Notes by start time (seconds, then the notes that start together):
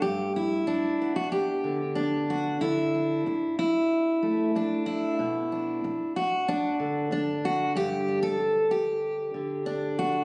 0.02 G2 G4
0.36 E4
0.67 D4, muted steel-string acoustic guitar stroke
1.02 B3
1.16 F#4
1.32 G4
1.64 D3
1.95 D4, muted steel-string acoustic guitar stroke
2.30 F#4
2.61 D3 E4
2.94 D4
3.26 muted steel-string acoustic guitar stroke
3.59 E4
4.23 A3
4.55 D4, muted steel-string acoustic guitar stroke
4.86 E4
5.19 B2
5.52 D4
5.84 muted steel-string acoustic guitar stroke
6.16 F#4
6.48 D4
6.80 D3
7.11 D4, muted steel-string acoustic guitar stroke
7.45 F#4
7.75 G2 G4
8.08 D4
8.23 A4
8.40 muted steel-string acoustic guitar stroke
8.71 G4
9.34 D3
9.66 D4, muted steel-string acoustic guitar stroke
9.99 F#4